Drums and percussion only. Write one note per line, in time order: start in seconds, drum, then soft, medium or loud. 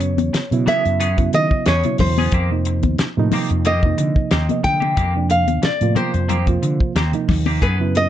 0.00 closed hi-hat medium
0.18 closed hi-hat soft
0.18 high conga medium
0.34 snare loud
0.34 closed hi-hat medium
0.52 closed hi-hat soft
0.67 closed hi-hat medium
0.67 high conga medium
0.67 low conga medium
0.85 closed hi-hat soft
1.00 closed hi-hat medium
1.18 kick medium
1.18 closed hi-hat soft
1.33 closed hi-hat medium
1.51 kick medium
1.66 snare loud
1.66 closed hi-hat medium
1.83 closed hi-hat soft
1.83 high conga medium
1.98 kick medium
1.98 open hi-hat medium
1.98 low conga medium
2.18 high conga medium
2.32 kick loud
2.32 closed hi-hat medium
2.65 closed hi-hat medium
2.83 kick medium
2.83 closed hi-hat soft
2.83 high conga medium
2.99 snare loud
2.99 closed hi-hat medium
3.32 open hi-hat medium
3.32 high conga medium
3.32 low conga medium
3.50 closed hi-hat soft
3.65 closed hi-hat medium
3.83 kick medium
3.98 closed hi-hat medium
4.16 kick medium
4.31 snare loud
4.31 closed hi-hat medium
4.49 closed hi-hat soft
4.49 high conga medium
4.64 kick medium
4.64 snare soft
4.64 closed hi-hat medium
4.64 low conga medium
4.82 high conga medium
4.97 kick loud
4.97 closed hi-hat medium
5.30 closed hi-hat medium
5.48 closed hi-hat soft
5.48 high conga medium
5.63 snare loud
5.63 closed hi-hat medium
5.81 closed hi-hat soft
5.96 closed hi-hat medium
5.96 high conga medium
5.96 low conga medium
6.14 closed hi-hat soft
6.29 closed hi-hat medium
6.29 low conga medium
6.47 kick medium
6.47 closed hi-hat soft
6.63 closed hi-hat medium
6.80 kick medium
6.96 snare loud
6.96 closed hi-hat medium
7.13 closed hi-hat soft
7.29 kick medium
7.29 snare soft
7.29 open hi-hat medium
7.29 low conga medium
7.46 high conga medium
7.62 kick loud
7.62 closed hi-hat medium
7.95 closed hi-hat medium